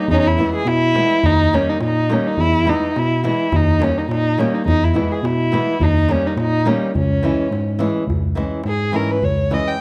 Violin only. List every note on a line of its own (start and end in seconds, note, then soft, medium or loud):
0.11 0.21 C#4 loud
0.11 0.15 D#4 loud
0.19 0.28 D#4 loud
0.27 0.54 E4 medium
0.55 0.69 G#4 medium
0.67 1.27 E4 loud
1.26 1.56 D#4 loud
1.55 1.71 C#4 loud
1.69 1.82 D#4 medium
1.83 2.14 D#4 medium
2.13 2.29 C#4 medium
2.27 2.42 D#4 medium
2.40 2.70 E4 loud
2.69 3.00 D#4 medium
2.98 3.25 E4 loud
3.26 3.58 E4 medium
3.56 3.85 D#4 loud
3.83 4.00 C#4 medium
3.98 4.10 D#4 medium
4.11 4.40 D#4 loud
4.39 4.56 C#4 medium
4.54 4.66 D#4 medium
4.67 4.85 D#4 loud
4.84 5.13 E4 medium
5.11 5.27 G#4 medium
5.25 5.84 E4 medium
5.83 6.13 D#4 loud
6.11 6.28 C#4 medium
6.27 6.39 D#4 medium
6.40 6.69 D#4 medium
6.68 6.95 C#4 medium
6.97 7.77 C#4 medium
8.68 8.97 G#4 medium
8.96 9.12 A#4 medium
9.11 9.26 B4 medium
9.24 9.55 C#5 medium
9.54 9.69 D#5 medium
9.68 9.81 G5 medium